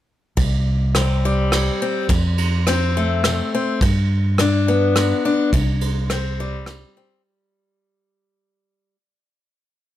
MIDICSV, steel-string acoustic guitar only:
0, 0, Header, 1, 2, 480
1, 0, Start_track
1, 0, Key_signature, 0, "major"
1, 0, Tempo, 571429
1, 313, Time_signature, 3, 2, 24, 8
1, 8374, End_track
2, 0, Start_track
2, 0, Title_t, "Steel-string acoustic guitar"
2, 0, Program_c, 0, 25
2, 310, Note_on_c, 0, 48, 69
2, 746, Note_off_c, 0, 48, 0
2, 798, Note_on_c, 0, 52, 58
2, 804, Note_on_c, 0, 60, 47
2, 1052, Note_on_c, 0, 55, 47
2, 1231, Note_off_c, 0, 52, 0
2, 1286, Note_on_c, 0, 43, 55
2, 1518, Note_off_c, 0, 60, 0
2, 1528, Note_on_c, 0, 60, 51
2, 1715, Note_off_c, 0, 43, 0
2, 1735, Note_off_c, 0, 60, 0
2, 1762, Note_on_c, 0, 41, 75
2, 1767, Note_off_c, 0, 55, 0
2, 2194, Note_off_c, 0, 41, 0
2, 2242, Note_on_c, 0, 53, 58
2, 2246, Note_on_c, 0, 60, 56
2, 2494, Note_on_c, 0, 57, 52
2, 2675, Note_off_c, 0, 53, 0
2, 2726, Note_on_c, 0, 48, 56
2, 2966, Note_off_c, 0, 60, 0
2, 2978, Note_on_c, 0, 60, 52
2, 3157, Note_off_c, 0, 48, 0
2, 3181, Note_off_c, 0, 57, 0
2, 3182, Note_off_c, 0, 60, 0
2, 3211, Note_on_c, 0, 43, 73
2, 3640, Note_off_c, 0, 43, 0
2, 3691, Note_on_c, 0, 50, 58
2, 3696, Note_on_c, 0, 62, 55
2, 3934, Note_on_c, 0, 59, 48
2, 4119, Note_off_c, 0, 50, 0
2, 4164, Note_on_c, 0, 43, 57
2, 4402, Note_off_c, 0, 62, 0
2, 4412, Note_on_c, 0, 62, 52
2, 4596, Note_off_c, 0, 43, 0
2, 4619, Note_off_c, 0, 62, 0
2, 4620, Note_off_c, 0, 59, 0
2, 4650, Note_on_c, 0, 48, 70
2, 5078, Note_off_c, 0, 48, 0
2, 5125, Note_on_c, 0, 52, 59
2, 5131, Note_on_c, 0, 60, 52
2, 5377, Note_on_c, 0, 55, 49
2, 5555, Note_off_c, 0, 52, 0
2, 5614, Note_on_c, 0, 43, 55
2, 5844, Note_off_c, 0, 60, 0
2, 5854, Note_on_c, 0, 60, 51
2, 6038, Note_off_c, 0, 43, 0
2, 6057, Note_off_c, 0, 60, 0
2, 7521, Note_off_c, 0, 55, 0
2, 8374, End_track
0, 0, End_of_file